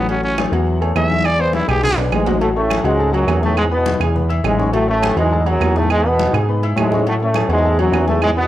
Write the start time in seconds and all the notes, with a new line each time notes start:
Already playing: A1
0.09 F#3 C#4 F#4 F#5, high conga, low agogo
0.24 C#4, high conga
0.38 A3 A4 C#5, high conga, low timbale, low agogo, claves
0.52 E2 F#3 F#4 F#5, high conga, low agogo
0.67 high conga
0.81 A3 A4 C#5, high conga, low agogo
0.95 E2 E5, high conga, low timbale, low agogo, claves
1.10 G#3 G#4 G#5, high conga
1.25 D5, high conga, low agogo, claves
1.39 B3 B4 C5 D5, high conga
1.53 E4, high conga, low timbale, low agogo
1.68 B1 G#3 G4 G#4 G#5, high conga, low conga, low agogo, claves
1.83 G#4, high conga, low conga, high timbale
1.97 B1 B3 B4 D5, high conga, high timbale, low agogo
2.12 A1 G#2 G#3, high conga, low timbale, low agogo, claves
2.27 F#3 F#4 F#5, high conga, low timbale
2.41 A2 F#3 A3 F#4 F#5, high conga, low agogo
2.56 A2 A3 C#4 C#5 C#6, high conga
2.70 high conga, low timbale, low agogo, claves
2.84 C#2 G#2 F#3 G#3 F#4 F#5, high conga, low agogo
2.99 A3 A4 A5, high conga
3.13 F#2 F#3 F#4 F#5, high conga, low agogo
3.27 E2, high conga, low timbale, low agogo, claves
3.42 A2 G#3 A3 G#4 G#5, high conga
3.57 G#2 G#3, high conga, low agogo, claves
3.71 B2 B3 B4 B5, high conga
3.86 high conga, low timbale, low agogo
4.00 E2 G#3 G#4 G#5, high conga, low conga, low agogo, claves
4.15 B3 B4 B5, high conga, low conga
4.29 E4 E5 E6, high conga, low agogo
4.43 A1 G#2 G#3, high conga, low timbale, low agogo, claves
4.58 C#4 C#5 C#6, high conga
4.73 A2 F#3 A3 F#4 F#5, high conga, low agogo
4.88 A2 A3 C#4 C#5 C#6, high conga
5.03 high conga, low timbale, low agogo, claves
5.16 E2 G#2 F#3 G#3 F#4 F#5, high conga, low agogo
5.32 A3 A4 A5, high conga
5.46 F#2 F#3 F#4 F#5, high conga, low agogo
5.60 E2, high conga, low timbale, low agogo, claves
5.76 A2 G#3 A3 G#4 G#5, high conga
5.90 G#2 G#3, high conga, low agogo, claves
6.05 B2 B3 B4 B5, high conga
6.19 high conga, low timbale, low agogo
6.33 G#2 G#3 G#4 G#5, high conga, low conga, low agogo, claves
6.48 B3 B4 B5, high conga
6.63 E4 E5 E6, high conga, low agogo
6.76 G#2 A2 G#3, high conga, low timbale, low agogo, claves
6.92 C#4 C#5 C#6, high conga
7.06 A2 F#3 A3 F#4 F#5, high conga, low agogo
7.20 A2 A3 C#4 C#5 C#6, high conga
7.34 high conga, low timbale, low agogo, claves
7.49 E2 G#2 F#3 G#3 F#4 F#5, high conga, low agogo
7.64 A3 A4 A5, high conga
7.79 F#2 F#3 F#4 F#5, high conga, low agogo
7.92 E2, high conga, low timbale, low agogo, claves
8.07 A2 G#3 A3 G#4 G#5, high conga
8.22 G#2 G#3, high conga, low agogo, claves
8.36 B2 B3 B4 B5, high conga